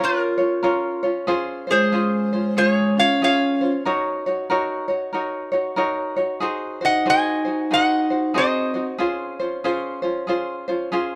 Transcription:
Already playing: ukulele A#4
0.00 ukulele C#4 F4 C#5, vibraphone F4, resonator guitar played with a steel bar F4
0.05 resonator guitar played with a steel bar A#4
0.38 ukulele C#4 F4 C#5
0.63 ukulele C#4 F4 A#4 C#5
1.03 ukulele C#4 F4 C#5
1.27 ukulele C#4 F4 G#4 C5
1.67 ukulele C#4 F4 C5, resonator guitar played with a steel bar G#4
1.71 vibraphone G#3, resonator guitar played with a steel bar C5
1.92 ukulele C#4 F4 G#4 C5
2.33 ukulele C#4 F4 C5
2.57 vibraphone G#3, ukulele C#4 F4 G#4, resonator guitar played with a steel bar G#4 C5
2.69 resonator guitar played with a steel bar C#5
2.97 vibraphone C#4, ukulele C#4 F4, resonator guitar played with a steel bar C#5 F5
3.20 vibraphone C#4, ukulele C#4 F4 G#4, resonator guitar played with a steel bar C#5 F5
3.61 ukulele C#4 F4 C5
3.85 ukulele D#4 F#4 A#4 C#5
4.26 ukulele D#4 F#4 C#5
4.50 ukulele D#4 F#4 A#4 C#5
4.88 ukulele D#4 F#4 C#5
5.13 ukulele D#4 F#4 A#4 C#5
5.52 ukulele D#4 F#4 C#5
5.76 ukulele D#4 F#4 A#4 C#5
6.16 ukulele D#4 F#4 C#5
6.40 ukulele D#4 F#4 G#4 C5
6.81 ukulele D#4 F#4 C5, vibraphone D#4, resonator guitar played with a steel bar D#5
6.85 resonator guitar played with a steel bar F#5
7.05 ukulele D#4 F#4 G#4 C5, vibraphone D#4
7.10 resonator guitar played with a steel bar D#5 G#5
7.45 ukulele D#4 F#4 C5
7.71 ukulele D#4 F#4 G#4 C5, vibraphone D#4, resonator guitar played with a steel bar F#5
7.75 resonator guitar played with a steel bar D#5
8.10 ukulele D#4 F#4 C5
8.34 vibraphone C4, ukulele D#4 F#4 G#4 C5, resonator guitar played with a steel bar D#5
8.39 resonator guitar played with a steel bar C5
8.74 ukulele D#4 F#4 C5
8.98 ukulele C#4 F4 G#4 C5
9.40 ukulele C#4 F4 C5
9.64 ukulele C#4 F4 G#4 C5
10.02 ukulele C#4 F4 C5
10.27 ukulele C#4 F4 G#4 C5
10.68 ukulele C#4 F4 C5
10.92 ukulele C#4 F4 G#4 C5

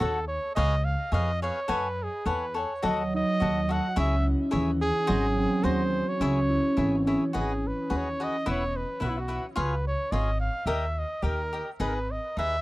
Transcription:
Already playing: harp B3 G#4
0.00 upright bass D#2, cavaquinho F#4 A4 C#5 F#5, trumpet A4
0.28 trumpet C#5
0.55 upright bass C#2, cavaquinho G#4 B4 C#5 F5, trumpet D#5
0.84 trumpet F5
1.12 upright bass F2, cavaquinho G#4 B4 C#5 F5, trumpet D#5
1.42 cavaquinho G#4 B4 C#5 F5, trumpet C#5
1.68 upright bass F#2, cavaquinho A4 C#5 F#5 G#5, trumpet B4
2.03 trumpet G#4
2.26 upright bass E2, cavaquinho A4 C#5 F#5 G#5, trumpet B4
2.54 cavaquinho A4 C#5 F#5 G#5, trumpet C#5
2.82 upright bass D#2, harp F#3, cavaquinho F#4 A4 D#5 F#5, trumpet D#5
3.14 harp D#4, trumpet D#5
3.40 upright bass D#2, cavaquinho F#4 A4 D#5 F#5, harp F#4
3.69 cavaquinho F#4 A4 D#5 F#5, trumpet F#5
3.96 upright bass C#2, harp C#4, cavaquinho E4 G#4 C#5 E5, trumpet E5
4.27 harp E4
4.51 upright bass D#2, harp E3, cavaquinho E4 G#4 C#5 E5
4.81 harp C#4, trumpet G#4
5.07 upright bass G#1, harp F#3, cavaquinho F#4 G#4 C5 D#5
5.37 harp C4
5.63 upright bass D#2, harp F#4, cavaquinho F#4 G#4 C5 D#5, trumpet C5
6.08 trumpet C#5
6.20 upright bass C#2, harp C#4, cavaquinho E4 G#4 C#5 E5
6.24 trumpet C#5
6.49 harp E4
6.77 upright bass G#1, harp E3, cavaquinho E4 G#4 C#5 E5
7.05 harp C#4, cavaquinho E4 G#4 C#5 E5
7.33 upright bass G#1, cavaquinho F#4 G#4 B4 D#5
7.38 trumpet G#4
7.67 trumpet B4
7.90 upright bass D#2, cavaquinho F#4 G#4 B4 D#5
7.96 trumpet C#5
8.20 cavaquinho F#4 G#4 B4 D#5, trumpet D#5
8.46 upright bass E1, cavaquinho E4 B4 E5 F#5, trumpet C#5
8.76 trumpet B4
9.00 upright bass B1, cavaquinho E4 B4 E5 F#5
9.05 trumpet F#4
9.09 trumpet E4
9.18 trumpet F#4
9.28 cavaquinho E4 B4 E5 F#5
9.56 upright bass C#2, cavaquinho F4 G#4 C#5 F5, trumpet B4
9.87 trumpet C#5
10.12 upright bass G#1, cavaquinho F4 G#4 C#5 F5, trumpet D#5
10.40 trumpet F5
10.66 upright bass D#2, cavaquinho G4 A#4 D#5 G5, trumpet E5
10.99 trumpet D#5
11.22 upright bass D#2, cavaquinho G4 A#4 D#5 G5, trumpet A#4
11.53 cavaquinho G4 A#4 D#5 G5
11.80 upright bass G#1, cavaquinho D#4 G#4 B4 D#5, trumpet B4
11.88 trumpet A#4
11.95 trumpet B4
12.11 trumpet D#5
12.37 upright bass D#2, cavaquinho D#4 G#4 B4 D#5, trumpet E5

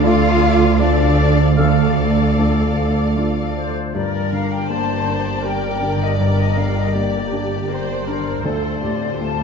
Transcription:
Already playing: felt piano D2 D3, double bass section D2, harp D3 A3 D4 A4
0.05 felt piano A3 D4 F4, french horn section F4, cello section F4, harp F4, viola section A4 D5, violin section F5, flute section F5
0.31 harp A4
0.56 harp D5
0.80 felt piano A3 D4 F4, french horn section D4, cello section D4, harp F4, viola section A4 D5, flute section D5, violin section D5 F5
1.07 harp A3
1.33 harp D4
1.57 felt piano D2 D3, harp D3, french horn section A3, cello section A3, viola section A4 D5, clarinet A4, flute section A4, violin section A4 F5, oboe F5
1.86 harp A3
2.12 harp D4
2.38 felt piano A3 D4 F4, harp F4
2.65 harp A4
2.91 harp D5
3.16 felt piano A3 D4 F4, harp F4
3.43 harp A3
3.55 flute section C5
3.70 harp D4
3.94 double bass section G1, felt piano G2, cello section G2, harp G2, violin section G4 A#4 D5, viola section A#4, flute section D5
4.20 harp D3
4.31 felt piano D3, flute section F5
4.45 harp D4
4.52 flute section G5
4.69 felt piano A#3, harp G4, viola section C5, flute section A5
4.96 harp A#4
5.07 felt piano D4
5.20 harp G4
5.44 felt piano G4, viola section A#4, harp A#4, flute section G5
5.70 harp D4
5.81 felt piano D4
5.95 harp D3
6.02 flute section D#5
6.19 felt piano G2, harp G2, viola section A#4, flute section D5
6.38 flute section D#5
6.45 harp D4
6.57 felt piano D3, flute section F5
6.70 harp D3
6.77 flute section D#5
6.94 felt piano A#3, viola section G4, harp G4, flute section D5
7.19 harp A#4
7.32 felt piano D4
7.44 harp G4
7.68 felt piano G4, harp A#4, viola section C5
7.93 harp D4
8.07 felt piano D4, viola section A#4, flute section C5
8.19 harp D3
8.43 double bass section D2, cello section D2, felt piano D2, harp D3, violin section F4 A4 C5, viola section A4, flute section D5
8.70 harp A3
8.83 felt piano A2, viola section G4
8.96 harp C4
9.21 felt piano A3, harp F4, flute section A5

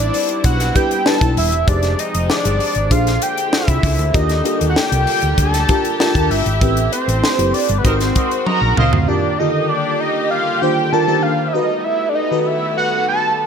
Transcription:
Already playing: string section G3 B3 C4 E4, fm electric piano D4 D#4 E4 G4 B4, analog synth lead D5
0.14 open hi-hat
0.29 closed hi-hat
0.44 fingered electric bass B1, analog synth lead F#5, kick, closed hi-hat
0.60 snare, closed hi-hat
0.74 fm electric piano D4 E4 G4 B4, analog synth lead G5, kick, closed hi-hat
0.91 closed hi-hat
1.05 fm electric piano D4 E4 G4 B4, analog synth lead A5, snare
1.20 fingered electric bass B1, fm electric piano D4 E4 G4 B4, kick, closed hi-hat
1.37 fingered electric bass D#1, analog synth lead E5, open hi-hat
1.52 fingered electric bass E1, closed hi-hat
1.67 fingered electric bass F1, string section F3 G#3 C4 D#4, fm electric piano D#4 G4 G#4 C5, analog synth lead D5, kick, closed hi-hat
1.83 snare, closed hi-hat
1.99 analog synth lead D#5, closed hi-hat
2.14 fingered electric bass F1, closed hi-hat
2.30 analog synth lead D5, snare
2.44 fingered electric bass G1, fm electric piano D#4 G4 G#4 C5, closed hi-hat
2.60 open hi-hat
2.75 fingered electric bass G#1, closed hi-hat
2.90 fingered electric bass A#1, string section D3 G#3 A#3, fm electric piano D4 F4 G#4 C5, analog synth lead F5, kick, closed hi-hat
3.07 snare, closed hi-hat
3.22 analog synth lead G5, closed hi-hat
3.38 closed hi-hat
3.53 analog synth lead E5, snare
3.68 fingered electric bass C2, kick, closed hi-hat
3.83 fingered electric bass C#2, kick, open hi-hat
3.99 fingered electric bass D2, closed hi-hat
4.13 fingered electric bass D#2, string section G3 G4, fm electric piano D4 F4 G4 A#4, analog synth lead D#5, kick, closed hi-hat
4.29 snare, closed hi-hat
4.44 fm electric piano D4 F4 G4 A#4, closed hi-hat
4.61 fingered electric bass D#2, closed hi-hat
4.69 analog synth lead F#5
4.76 analog synth lead G5, snare
4.92 fingered electric bass C2, closed hi-hat
5.07 open hi-hat
5.22 fingered electric bass D2, closed hi-hat
5.38 fingered electric bass D2, analog synth lead A5, kick, closed hi-hat
5.54 snare, closed hi-hat
5.68 fm electric piano D4 F4 G4 A#4, kick, closed hi-hat
5.85 closed hi-hat
6.00 fm electric piano D4 F4 G4 A#4, analog synth lead A5, snare
6.15 fingered electric bass D#2, fm electric piano D4 F4 G4 A#4, kick, closed hi-hat
6.30 fingered electric bass G1, analog synth lead E5, open hi-hat
6.46 fingered electric bass G#1, closed hi-hat
6.61 fingered electric bass A1, string section A3 C4, fm electric piano C4 E4 G4 B4, kick, closed hi-hat
6.77 closed hi-hat
6.92 analog synth lead C5, closed hi-hat
7.08 fingered electric bass A1, closed hi-hat
7.24 snare
7.38 fingered electric bass F#1, fm electric piano C4 E4 G4 B4, closed hi-hat
7.54 analog synth lead D5, open hi-hat
7.69 fingered electric bass G1, closed hi-hat
7.78 analog synth lead B4
7.84 fingered electric bass G#1, string section G#3 F#4, fm electric piano C4 D#4 F#4 A#4, horn section A#4 C5 D#5, analog synth lead C5, kick, closed hi-hat
8.00 snare, closed hi-hat
8.16 horn section A#4 C5 D#5, kick, closed hi-hat
8.31 closed hi-hat
8.46 horn section A#4 C5 D#5, analog synth lead A#5, high tom
8.61 fingered electric bass A#1
8.77 fingered electric bass C#2, horn section A#4 C5 D#5, analog synth lead F5, mid tom
8.93 fingered electric bass D2, floor tom
9.08 fm electric piano D#3 D4 F4 G4 A#4, string section G3 A#3 G4, analog synth lead D5
9.38 fm electric piano D3 D#3 F4 G4 A4, analog synth lead D#5
9.69 analog synth lead D5
10.00 analog synth lead D#5
10.31 analog synth lead F5
10.62 fm electric piano D#3 D4 F4 G4 C5, analog synth lead G5
10.92 fm electric piano D#3 D4 F4 G4 A#4, analog synth lead A5
11.08 fm electric piano D#3 D4 F4 G4 A#4
11.22 analog synth lead F5
11.48 analog synth lead E5
11.53 string section A3 B3, fm electric piano D#4 F#4 A4 B4, analog synth lead D#5
11.84 analog synth lead E5
12.09 analog synth lead D5
12.15 analog synth lead D#5
12.31 fm electric piano D#3 F#4 A4 B4
12.40 analog synth lead D#5
12.46 analog synth lead E5
12.77 analog synth lead F#5
13.09 analog synth lead A5

